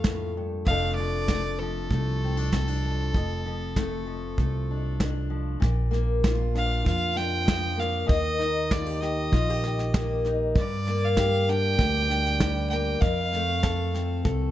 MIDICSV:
0, 0, Header, 1, 5, 480
1, 0, Start_track
1, 0, Key_signature, -2, "major"
1, 0, Tempo, 617920
1, 510, Time_signature, 4, 2, 24, 8
1, 11273, End_track
2, 0, Start_track
2, 0, Title_t, "Fiddle"
2, 0, Program_c, 0, 110
2, 0, Note_on_c, 0, 77, 96
2, 232, Note_off_c, 0, 77, 0
2, 514, Note_on_c, 0, 77, 98
2, 736, Note_off_c, 0, 77, 0
2, 741, Note_on_c, 0, 74, 101
2, 1241, Note_on_c, 0, 69, 90
2, 1253, Note_off_c, 0, 74, 0
2, 3885, Note_off_c, 0, 69, 0
2, 5109, Note_on_c, 0, 77, 92
2, 5320, Note_off_c, 0, 77, 0
2, 5343, Note_on_c, 0, 77, 103
2, 5571, Note_on_c, 0, 79, 108
2, 5582, Note_off_c, 0, 77, 0
2, 6058, Note_on_c, 0, 77, 91
2, 6070, Note_off_c, 0, 79, 0
2, 6281, Note_off_c, 0, 77, 0
2, 6286, Note_on_c, 0, 75, 101
2, 6772, Note_on_c, 0, 74, 87
2, 6784, Note_off_c, 0, 75, 0
2, 6998, Note_on_c, 0, 75, 92
2, 7010, Note_off_c, 0, 74, 0
2, 7959, Note_off_c, 0, 75, 0
2, 8222, Note_on_c, 0, 74, 93
2, 8582, Note_on_c, 0, 77, 100
2, 8594, Note_off_c, 0, 74, 0
2, 8931, Note_on_c, 0, 79, 127
2, 8943, Note_off_c, 0, 77, 0
2, 9862, Note_off_c, 0, 79, 0
2, 9867, Note_on_c, 0, 79, 91
2, 10106, Note_on_c, 0, 77, 107
2, 10118, Note_off_c, 0, 79, 0
2, 11069, Note_off_c, 0, 77, 0
2, 11273, End_track
3, 0, Start_track
3, 0, Title_t, "Steel-string acoustic guitar"
3, 0, Program_c, 1, 25
3, 0, Note_on_c, 1, 46, 64
3, 0, Note_on_c, 1, 53, 51
3, 0, Note_on_c, 1, 57, 52
3, 0, Note_on_c, 1, 62, 50
3, 0, Note_on_c, 1, 69, 52
3, 54, Note_on_c, 1, 45, 58
3, 282, Note_off_c, 1, 45, 0
3, 289, Note_on_c, 1, 43, 57
3, 520, Note_off_c, 1, 43, 0
3, 526, Note_off_c, 1, 46, 0
3, 529, Note_on_c, 1, 41, 72
3, 536, Note_off_c, 1, 53, 0
3, 537, Note_off_c, 1, 57, 0
3, 539, Note_on_c, 1, 53, 62
3, 540, Note_on_c, 1, 57, 65
3, 543, Note_off_c, 1, 62, 0
3, 546, Note_on_c, 1, 62, 59
3, 549, Note_off_c, 1, 69, 0
3, 552, Note_on_c, 1, 69, 65
3, 772, Note_off_c, 1, 53, 0
3, 775, Note_on_c, 1, 53, 64
3, 1025, Note_off_c, 1, 57, 0
3, 1028, Note_on_c, 1, 57, 53
3, 1254, Note_off_c, 1, 53, 0
3, 1257, Note_on_c, 1, 53, 57
3, 1502, Note_off_c, 1, 57, 0
3, 1506, Note_on_c, 1, 57, 50
3, 1737, Note_off_c, 1, 62, 0
3, 1740, Note_on_c, 1, 60, 48
3, 1842, Note_off_c, 1, 60, 0
3, 1842, Note_on_c, 1, 62, 43
3, 1958, Note_off_c, 1, 62, 0
3, 1961, Note_on_c, 1, 60, 52
3, 2080, Note_off_c, 1, 60, 0
3, 2080, Note_on_c, 1, 62, 45
3, 2203, Note_off_c, 1, 53, 0
3, 2206, Note_on_c, 1, 53, 55
3, 2424, Note_off_c, 1, 57, 0
3, 2429, Note_off_c, 1, 69, 0
3, 2439, Note_off_c, 1, 62, 0
3, 2440, Note_off_c, 1, 41, 0
3, 2450, Note_on_c, 1, 41, 69
3, 2681, Note_off_c, 1, 53, 0
3, 2684, Note_on_c, 1, 53, 57
3, 2922, Note_on_c, 1, 57, 56
3, 3148, Note_off_c, 1, 53, 0
3, 3158, Note_on_c, 1, 53, 55
3, 3402, Note_off_c, 1, 57, 0
3, 3419, Note_on_c, 1, 57, 51
3, 3656, Note_on_c, 1, 62, 47
3, 3887, Note_off_c, 1, 62, 0
3, 3897, Note_on_c, 1, 62, 53
3, 4107, Note_off_c, 1, 53, 0
3, 4117, Note_on_c, 1, 53, 54
3, 4331, Note_off_c, 1, 53, 0
3, 4341, Note_off_c, 1, 62, 0
3, 4343, Note_off_c, 1, 57, 0
3, 4349, Note_on_c, 1, 46, 75
3, 4368, Note_off_c, 1, 41, 0
3, 4589, Note_on_c, 1, 58, 60
3, 4843, Note_on_c, 1, 65, 62
3, 5085, Note_on_c, 1, 62, 52
3, 5306, Note_off_c, 1, 65, 0
3, 5316, Note_on_c, 1, 65, 67
3, 5544, Note_off_c, 1, 62, 0
3, 5553, Note_on_c, 1, 62, 55
3, 5790, Note_on_c, 1, 53, 63
3, 6034, Note_off_c, 1, 58, 0
3, 6038, Note_on_c, 1, 58, 59
3, 6248, Note_off_c, 1, 53, 0
3, 6249, Note_off_c, 1, 62, 0
3, 6264, Note_on_c, 1, 51, 84
3, 6277, Note_off_c, 1, 46, 0
3, 6279, Note_off_c, 1, 65, 0
3, 6517, Note_on_c, 1, 63, 64
3, 6759, Note_on_c, 1, 65, 69
3, 6885, Note_off_c, 1, 65, 0
3, 6885, Note_on_c, 1, 67, 56
3, 7001, Note_off_c, 1, 67, 0
3, 7010, Note_on_c, 1, 67, 64
3, 7251, Note_off_c, 1, 67, 0
3, 7254, Note_on_c, 1, 65, 69
3, 7379, Note_off_c, 1, 65, 0
3, 7379, Note_on_c, 1, 67, 60
3, 7490, Note_off_c, 1, 67, 0
3, 7508, Note_on_c, 1, 67, 57
3, 7730, Note_off_c, 1, 58, 0
3, 7733, Note_on_c, 1, 58, 64
3, 7958, Note_off_c, 1, 63, 0
3, 7977, Note_on_c, 1, 63, 59
3, 8178, Note_off_c, 1, 58, 0
3, 8180, Note_off_c, 1, 63, 0
3, 8185, Note_off_c, 1, 67, 0
3, 8192, Note_off_c, 1, 51, 0
3, 8216, Note_on_c, 1, 43, 80
3, 8455, Note_on_c, 1, 58, 68
3, 8690, Note_on_c, 1, 67, 67
3, 8923, Note_on_c, 1, 62, 62
3, 9139, Note_off_c, 1, 67, 0
3, 9148, Note_on_c, 1, 67, 72
3, 9385, Note_off_c, 1, 62, 0
3, 9395, Note_on_c, 1, 62, 55
3, 9644, Note_on_c, 1, 55, 64
3, 9872, Note_off_c, 1, 58, 0
3, 9881, Note_on_c, 1, 58, 64
3, 10083, Note_off_c, 1, 67, 0
3, 10086, Note_off_c, 1, 62, 0
3, 10090, Note_off_c, 1, 58, 0
3, 10091, Note_off_c, 1, 55, 0
3, 10095, Note_off_c, 1, 43, 0
3, 10114, Note_on_c, 1, 41, 79
3, 10373, Note_on_c, 1, 57, 61
3, 10595, Note_on_c, 1, 69, 66
3, 10828, Note_on_c, 1, 60, 59
3, 11057, Note_off_c, 1, 69, 0
3, 11067, Note_on_c, 1, 69, 67
3, 11273, Note_off_c, 1, 41, 0
3, 11273, Note_off_c, 1, 57, 0
3, 11273, Note_off_c, 1, 60, 0
3, 11273, Note_off_c, 1, 69, 0
3, 11273, End_track
4, 0, Start_track
4, 0, Title_t, "Upright bass"
4, 0, Program_c, 2, 32
4, 0, Note_on_c, 2, 41, 84
4, 482, Note_off_c, 2, 41, 0
4, 517, Note_on_c, 2, 29, 77
4, 1446, Note_off_c, 2, 29, 0
4, 1478, Note_on_c, 2, 36, 87
4, 2408, Note_off_c, 2, 36, 0
4, 2443, Note_on_c, 2, 29, 80
4, 3372, Note_off_c, 2, 29, 0
4, 3401, Note_on_c, 2, 36, 84
4, 4331, Note_off_c, 2, 36, 0
4, 4366, Note_on_c, 2, 34, 86
4, 5294, Note_off_c, 2, 34, 0
4, 5329, Note_on_c, 2, 41, 83
4, 6255, Note_off_c, 2, 41, 0
4, 6286, Note_on_c, 2, 39, 89
4, 7213, Note_off_c, 2, 39, 0
4, 7240, Note_on_c, 2, 34, 91
4, 8169, Note_off_c, 2, 34, 0
4, 8197, Note_on_c, 2, 43, 94
4, 9126, Note_off_c, 2, 43, 0
4, 9155, Note_on_c, 2, 38, 96
4, 10083, Note_off_c, 2, 38, 0
4, 10110, Note_on_c, 2, 41, 90
4, 11039, Note_off_c, 2, 41, 0
4, 11068, Note_on_c, 2, 36, 87
4, 11273, Note_off_c, 2, 36, 0
4, 11273, End_track
5, 0, Start_track
5, 0, Title_t, "Drums"
5, 31, Note_on_c, 9, 38, 81
5, 34, Note_on_c, 9, 36, 66
5, 108, Note_off_c, 9, 38, 0
5, 112, Note_off_c, 9, 36, 0
5, 518, Note_on_c, 9, 36, 78
5, 595, Note_off_c, 9, 36, 0
5, 995, Note_on_c, 9, 38, 80
5, 998, Note_on_c, 9, 36, 64
5, 1073, Note_off_c, 9, 38, 0
5, 1075, Note_off_c, 9, 36, 0
5, 1480, Note_on_c, 9, 36, 73
5, 1558, Note_off_c, 9, 36, 0
5, 1961, Note_on_c, 9, 36, 66
5, 1962, Note_on_c, 9, 38, 82
5, 2039, Note_off_c, 9, 36, 0
5, 2040, Note_off_c, 9, 38, 0
5, 2443, Note_on_c, 9, 36, 73
5, 2520, Note_off_c, 9, 36, 0
5, 2923, Note_on_c, 9, 36, 63
5, 2924, Note_on_c, 9, 38, 78
5, 3001, Note_off_c, 9, 36, 0
5, 3002, Note_off_c, 9, 38, 0
5, 3402, Note_on_c, 9, 36, 71
5, 3480, Note_off_c, 9, 36, 0
5, 3885, Note_on_c, 9, 36, 68
5, 3885, Note_on_c, 9, 38, 85
5, 3962, Note_off_c, 9, 36, 0
5, 3963, Note_off_c, 9, 38, 0
5, 4367, Note_on_c, 9, 36, 90
5, 4368, Note_on_c, 9, 38, 27
5, 4445, Note_off_c, 9, 36, 0
5, 4445, Note_off_c, 9, 38, 0
5, 4607, Note_on_c, 9, 38, 29
5, 4685, Note_off_c, 9, 38, 0
5, 4847, Note_on_c, 9, 36, 70
5, 4847, Note_on_c, 9, 38, 98
5, 4925, Note_off_c, 9, 36, 0
5, 4925, Note_off_c, 9, 38, 0
5, 5090, Note_on_c, 9, 38, 28
5, 5168, Note_off_c, 9, 38, 0
5, 5331, Note_on_c, 9, 36, 82
5, 5335, Note_on_c, 9, 38, 24
5, 5409, Note_off_c, 9, 36, 0
5, 5413, Note_off_c, 9, 38, 0
5, 5570, Note_on_c, 9, 38, 30
5, 5647, Note_off_c, 9, 38, 0
5, 5810, Note_on_c, 9, 36, 69
5, 5810, Note_on_c, 9, 38, 100
5, 5888, Note_off_c, 9, 36, 0
5, 5888, Note_off_c, 9, 38, 0
5, 6054, Note_on_c, 9, 38, 27
5, 6132, Note_off_c, 9, 38, 0
5, 6281, Note_on_c, 9, 38, 28
5, 6287, Note_on_c, 9, 36, 93
5, 6358, Note_off_c, 9, 38, 0
5, 6365, Note_off_c, 9, 36, 0
5, 6529, Note_on_c, 9, 38, 29
5, 6607, Note_off_c, 9, 38, 0
5, 6767, Note_on_c, 9, 36, 65
5, 6767, Note_on_c, 9, 38, 83
5, 6844, Note_off_c, 9, 38, 0
5, 6845, Note_off_c, 9, 36, 0
5, 7007, Note_on_c, 9, 38, 29
5, 7085, Note_off_c, 9, 38, 0
5, 7245, Note_on_c, 9, 36, 85
5, 7246, Note_on_c, 9, 38, 26
5, 7323, Note_off_c, 9, 36, 0
5, 7323, Note_off_c, 9, 38, 0
5, 7485, Note_on_c, 9, 38, 31
5, 7563, Note_off_c, 9, 38, 0
5, 7605, Note_on_c, 9, 38, 25
5, 7683, Note_off_c, 9, 38, 0
5, 7722, Note_on_c, 9, 38, 94
5, 7723, Note_on_c, 9, 36, 69
5, 7800, Note_off_c, 9, 36, 0
5, 7800, Note_off_c, 9, 38, 0
5, 7958, Note_on_c, 9, 38, 25
5, 8036, Note_off_c, 9, 38, 0
5, 8196, Note_on_c, 9, 38, 28
5, 8200, Note_on_c, 9, 36, 88
5, 8274, Note_off_c, 9, 38, 0
5, 8278, Note_off_c, 9, 36, 0
5, 8442, Note_on_c, 9, 38, 27
5, 8520, Note_off_c, 9, 38, 0
5, 8675, Note_on_c, 9, 38, 84
5, 8678, Note_on_c, 9, 36, 69
5, 8753, Note_off_c, 9, 38, 0
5, 8755, Note_off_c, 9, 36, 0
5, 8920, Note_on_c, 9, 38, 27
5, 8997, Note_off_c, 9, 38, 0
5, 9157, Note_on_c, 9, 36, 94
5, 9158, Note_on_c, 9, 38, 28
5, 9235, Note_off_c, 9, 36, 0
5, 9235, Note_off_c, 9, 38, 0
5, 9399, Note_on_c, 9, 38, 31
5, 9476, Note_off_c, 9, 38, 0
5, 9522, Note_on_c, 9, 38, 25
5, 9599, Note_off_c, 9, 38, 0
5, 9635, Note_on_c, 9, 36, 70
5, 9636, Note_on_c, 9, 38, 93
5, 9713, Note_off_c, 9, 36, 0
5, 9713, Note_off_c, 9, 38, 0
5, 9873, Note_on_c, 9, 38, 26
5, 9951, Note_off_c, 9, 38, 0
5, 10111, Note_on_c, 9, 38, 28
5, 10112, Note_on_c, 9, 36, 93
5, 10189, Note_off_c, 9, 38, 0
5, 10190, Note_off_c, 9, 36, 0
5, 10351, Note_on_c, 9, 38, 28
5, 10429, Note_off_c, 9, 38, 0
5, 10588, Note_on_c, 9, 38, 91
5, 10592, Note_on_c, 9, 36, 67
5, 10665, Note_off_c, 9, 38, 0
5, 10669, Note_off_c, 9, 36, 0
5, 10831, Note_on_c, 9, 38, 30
5, 10909, Note_off_c, 9, 38, 0
5, 11069, Note_on_c, 9, 38, 25
5, 11070, Note_on_c, 9, 36, 90
5, 11147, Note_off_c, 9, 38, 0
5, 11148, Note_off_c, 9, 36, 0
5, 11273, End_track
0, 0, End_of_file